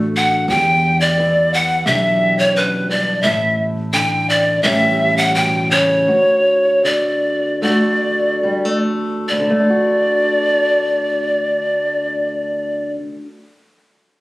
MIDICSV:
0, 0, Header, 1, 4, 480
1, 0, Start_track
1, 0, Key_signature, 2, "major"
1, 0, Tempo, 692042
1, 334, Time_signature, 4, 2, 24, 8
1, 3216, Tempo, 735294
1, 4656, Tempo, 801068
1, 5616, Tempo, 859599
1, 6096, Tempo, 882353
1, 8763, End_track
2, 0, Start_track
2, 0, Title_t, "Pan flute"
2, 0, Program_c, 0, 75
2, 114, Note_on_c, 0, 78, 85
2, 338, Note_off_c, 0, 78, 0
2, 342, Note_on_c, 0, 79, 96
2, 697, Note_on_c, 0, 74, 93
2, 708, Note_off_c, 0, 79, 0
2, 1067, Note_on_c, 0, 78, 92
2, 1077, Note_off_c, 0, 74, 0
2, 1295, Note_on_c, 0, 76, 88
2, 1305, Note_off_c, 0, 78, 0
2, 1655, Note_on_c, 0, 73, 90
2, 1666, Note_off_c, 0, 76, 0
2, 1777, Note_on_c, 0, 71, 81
2, 1787, Note_off_c, 0, 73, 0
2, 2015, Note_on_c, 0, 74, 81
2, 2025, Note_off_c, 0, 71, 0
2, 2236, Note_on_c, 0, 76, 95
2, 2247, Note_off_c, 0, 74, 0
2, 2514, Note_off_c, 0, 76, 0
2, 2729, Note_on_c, 0, 79, 91
2, 2980, Note_on_c, 0, 74, 83
2, 2991, Note_off_c, 0, 79, 0
2, 3210, Note_on_c, 0, 76, 94
2, 3220, Note_off_c, 0, 74, 0
2, 3568, Note_on_c, 0, 78, 92
2, 3578, Note_off_c, 0, 76, 0
2, 3681, Note_on_c, 0, 79, 87
2, 3691, Note_off_c, 0, 78, 0
2, 3916, Note_on_c, 0, 73, 94
2, 3926, Note_off_c, 0, 79, 0
2, 4659, Note_on_c, 0, 74, 81
2, 4668, Note_off_c, 0, 73, 0
2, 5118, Note_off_c, 0, 74, 0
2, 5122, Note_on_c, 0, 74, 80
2, 5829, Note_off_c, 0, 74, 0
2, 6086, Note_on_c, 0, 74, 86
2, 8059, Note_off_c, 0, 74, 0
2, 8763, End_track
3, 0, Start_track
3, 0, Title_t, "Steel-string acoustic guitar"
3, 0, Program_c, 1, 25
3, 0, Note_on_c, 1, 38, 69
3, 0, Note_on_c, 1, 50, 57
3, 0, Note_on_c, 1, 57, 53
3, 0, Note_on_c, 1, 62, 55
3, 0, Note_on_c, 1, 66, 60
3, 309, Note_off_c, 1, 57, 0
3, 313, Note_off_c, 1, 66, 0
3, 335, Note_off_c, 1, 38, 0
3, 339, Note_on_c, 1, 40, 70
3, 344, Note_on_c, 1, 67, 62
3, 360, Note_off_c, 1, 62, 0
3, 811, Note_off_c, 1, 50, 0
3, 818, Note_on_c, 1, 52, 63
3, 1305, Note_on_c, 1, 62, 61
3, 1307, Note_off_c, 1, 67, 0
3, 1310, Note_on_c, 1, 67, 65
3, 1765, Note_off_c, 1, 40, 0
3, 1768, Note_on_c, 1, 42, 60
3, 2008, Note_off_c, 1, 42, 0
3, 2010, Note_on_c, 1, 43, 65
3, 2223, Note_off_c, 1, 52, 0
3, 2228, Note_off_c, 1, 62, 0
3, 2228, Note_off_c, 1, 67, 0
3, 2244, Note_on_c, 1, 45, 70
3, 2250, Note_off_c, 1, 43, 0
3, 2250, Note_on_c, 1, 64, 65
3, 2726, Note_on_c, 1, 50, 59
3, 2728, Note_off_c, 1, 45, 0
3, 3187, Note_off_c, 1, 64, 0
3, 3211, Note_on_c, 1, 45, 72
3, 3214, Note_off_c, 1, 50, 0
3, 3217, Note_on_c, 1, 52, 57
3, 3220, Note_on_c, 1, 55, 61
3, 3227, Note_on_c, 1, 61, 58
3, 3229, Note_on_c, 1, 67, 68
3, 3675, Note_off_c, 1, 45, 0
3, 3677, Note_on_c, 1, 47, 62
3, 3909, Note_off_c, 1, 47, 0
3, 3911, Note_on_c, 1, 49, 60
3, 4134, Note_off_c, 1, 52, 0
3, 4138, Note_off_c, 1, 61, 0
3, 4139, Note_off_c, 1, 67, 0
3, 4152, Note_on_c, 1, 38, 69
3, 4158, Note_off_c, 1, 49, 0
3, 4159, Note_on_c, 1, 66, 69
3, 4164, Note_off_c, 1, 55, 0
3, 4648, Note_on_c, 1, 50, 63
3, 5120, Note_on_c, 1, 57, 59
3, 5125, Note_off_c, 1, 66, 0
3, 5126, Note_on_c, 1, 62, 58
3, 5132, Note_on_c, 1, 66, 65
3, 5606, Note_off_c, 1, 57, 0
3, 5609, Note_on_c, 1, 55, 58
3, 5730, Note_off_c, 1, 55, 0
3, 5730, Note_on_c, 1, 57, 45
3, 6067, Note_off_c, 1, 62, 0
3, 6070, Note_off_c, 1, 66, 0
3, 6088, Note_off_c, 1, 38, 0
3, 6094, Note_off_c, 1, 57, 0
3, 6095, Note_on_c, 1, 38, 60
3, 6140, Note_off_c, 1, 50, 0
3, 6147, Note_on_c, 1, 50, 60
3, 6202, Note_on_c, 1, 57, 56
3, 6255, Note_on_c, 1, 62, 54
3, 6310, Note_on_c, 1, 66, 52
3, 8090, Note_off_c, 1, 38, 0
3, 8142, Note_off_c, 1, 50, 0
3, 8197, Note_off_c, 1, 57, 0
3, 8250, Note_off_c, 1, 62, 0
3, 8305, Note_off_c, 1, 66, 0
3, 8763, End_track
4, 0, Start_track
4, 0, Title_t, "Upright bass"
4, 0, Program_c, 2, 32
4, 0, Note_on_c, 2, 33, 86
4, 306, Note_off_c, 2, 33, 0
4, 333, Note_on_c, 2, 40, 98
4, 1263, Note_off_c, 2, 40, 0
4, 1290, Note_on_c, 2, 35, 91
4, 2220, Note_off_c, 2, 35, 0
4, 2250, Note_on_c, 2, 33, 95
4, 3190, Note_off_c, 2, 33, 0
4, 3220, Note_on_c, 2, 33, 93
4, 4138, Note_off_c, 2, 33, 0
4, 8763, End_track
0, 0, End_of_file